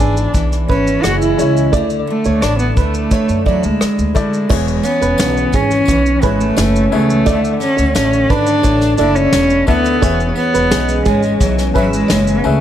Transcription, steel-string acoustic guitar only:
Already playing: E2 E4
0.34 E3
0.68 E4
1.03 G#3
1.38 C#4
1.74 D3
2.07 D4
2.42 E4
2.77 D4
3.11 A3
3.46 E4
4.15 D4
4.49 E2
4.83 C#4
5.54 C#4
5.88 E3
6.22 E4
6.58 C#4
7.26 D3
7.60 D4
7.96 A3
8.30 D4
8.64 A3
8.99 E4
9.68 A3
10.03 E2
10.37 C#4
10.72 G#3
11.06 C#4
11.41 E3
11.75 E4
12.10 C#4

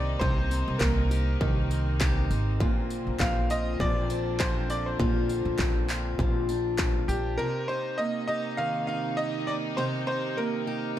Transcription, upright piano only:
Already playing: D5
0.19 C5
0.79 A#4
3.20 F5
3.51 D#5
3.80 D5
4.40 C5
4.70 D5
4.86 C5
7.08 G4
7.38 A#4
7.68 C5
7.98 D#5
8.28 D#5
8.57 F5
8.87 F5
9.17 D#5
9.47 D5
9.77 C5
10.07 C5
10.37 A#4

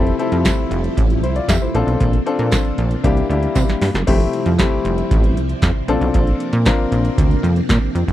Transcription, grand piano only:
Already playing: C4 E4 G4 A4
0.19 C4 E4 G4 A4
1.23 E4 C5
1.36 F4 D5
1.49 G4 E5
1.62 E4 C5
1.74 C4 D4 F4 A4
2.26 C4 D4 F4 A4
3.04 A#3 D4 E4 G4
3.29 A#3 D4 E4 G4
4.07 A3 C4 E4 G4
4.59 A3 C4 E4 G4
5.88 C4 D4 F4 A4
6.66 C4 D4 F4 A#4

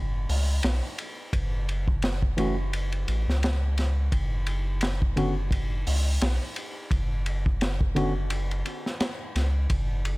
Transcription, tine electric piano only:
2.37 E3 A3 C#4 F#4
5.16 D3 B3 C#4 F#4
7.95 D3 B3 C#4 F#4

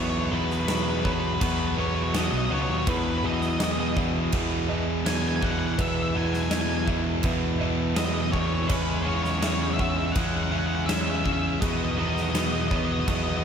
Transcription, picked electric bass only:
Already playing: E2
0.31 E2
1.41 E2
2.32 B1
2.51 C#2
2.69 D#2
2.88 E2
3.24 E2
4.33 E2
5.79 E2
6.15 E2
7.24 E2
8.70 E2
9.07 E2
10.16 E2
11.62 E2
11.97 E2
13.08 E2

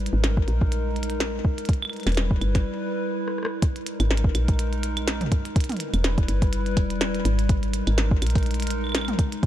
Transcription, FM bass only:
0.13 G#1
0.48 A#1
2.07 E1
2.41 G1
4.00 G#1
4.35 A#1
5.94 E1
6.28 G1
6.77 E1
7.25 G#1
7.87 G#1
8.22 A#1

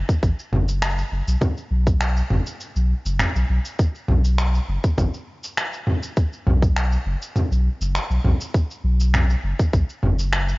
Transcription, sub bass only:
0.23 A1
0.52 F#1
1.12 F#1
1.27 B1
1.71 B1
2.30 F#1
2.76 B1
3.05 F#1
3.35 B1
3.49 B1
4.09 B1
4.69 F#1
4.98 A1
6.47 B1
7.06 F#1
7.51 B1
7.81 F#1
8.10 B1
8.25 B1
8.84 B1
9.44 F#1
9.73 B1
10.03 F#1

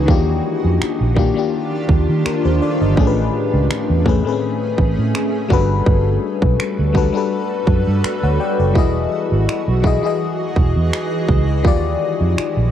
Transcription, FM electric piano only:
Already playing: E3 C#4 D#4 F#4 G#4
0.06 D#3 A#3 D4 F4
0.11 G4
1.14 D#3 A#3 D4 F4
1.19 G4
1.34 D#3 A#3 D4 F4
1.39 G4
2.25 F4 A#4
2.45 G4 C5
2.62 A4 D5
2.81 A#4 D#5
2.96 A2 A3 C#4 G#4
3.01 A4
3.07 B4
4.04 A2 A3 C#4 G#4
4.09 B4
4.24 A2 A3 C4 G#4
4.28 B4
4.32 C#4
5.49 G3 D4 F#4 A4
5.53 B4
6.93 G3 D4 F#4 A4
6.98 B4
7.13 G3 D4 F#4 A4
7.17 B4
8.23 C#5 F#5
8.40 D5 G5
8.60 A4 D5
8.74 E3 E4 F#4 G#4
8.78 D#5
9.82 E3 E4 F#4 G#4
9.87 D#5
10.02 E3 E4 F#4 G#4
10.06 D#5
11.63 D#3 D#4 F4 G4
11.67 D5

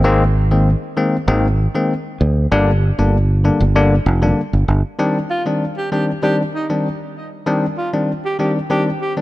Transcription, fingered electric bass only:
Already playing: G#1
1.28 G#1
2.21 D2
2.52 G1
2.99 G1
3.60 G1
4.06 F1
4.53 G1
4.68 G1

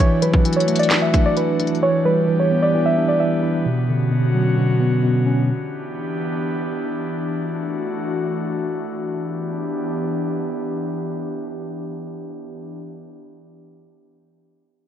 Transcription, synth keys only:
0.00 C#5
0.22 B4
0.56 C#5
0.79 D5
1.02 E5
1.26 D5
1.37 B4
1.83 C#5
2.05 B4
2.40 C#5
2.62 D5
2.86 E5
3.08 D5
3.20 E5

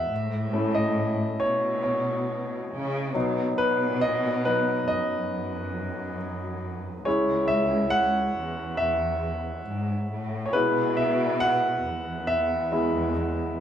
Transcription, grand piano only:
Already playing: E5 F#5
0.53 A3 C#4 E4
0.75 D#5
1.40 C#5
1.83 C#5
3.14 F#3 B3 D#4
3.58 B4
4.01 D#5
4.45 F#3 B3 D#4 B4
4.88 D#5
7.05 G#3 C#4 E4 C#5
7.48 E5
7.90 F#5
8.77 E5
10.46 C#5
10.53 G#3 B3 E4 B4
10.97 E5
11.40 F#5
12.27 E5
12.72 G#3 B3 E4

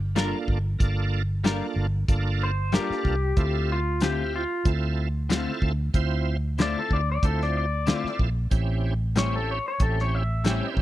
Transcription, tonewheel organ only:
0.15 A#3 D4 F4 A4
0.79 A#3 D4 F4 A4
1.43 A#3 D4 F4 A4
2.08 A#3 D4 F4 A4
2.72 A#3 D4 F4 A4
3.37 C4 E4 F4 A4
4.01 C4 E4 F4 G4
4.65 C4 E4 F4 A4
5.29 C4 E4 F4 A4
5.94 C4 E4 F4 C5
6.58 C4 E4 F4 A4
7.23 C4 E4 F4 C5
7.86 C4 E4 F4 A4
8.51 C4 C#4 E4 G4
9.15 C4 C#4 E4 G4
9.80 C4 C#4 E4 G4
10.45 C4 C#4 E4 G4

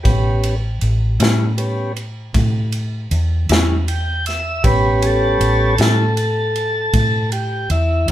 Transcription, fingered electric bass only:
0.05 A1
0.82 A1
1.20 A2
2.34 A2
3.11 E2
3.50 E2
4.64 A1
5.40 A1
5.79 A2
6.94 A2
7.70 E2

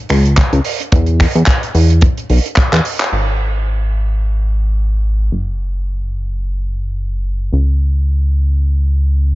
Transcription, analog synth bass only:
0.10 C#2
0.53 C#2
0.92 E2
1.35 E2
1.75 E2
2.30 B1
2.73 E2
3.12 G#1
5.32 F#1
7.52 C#2

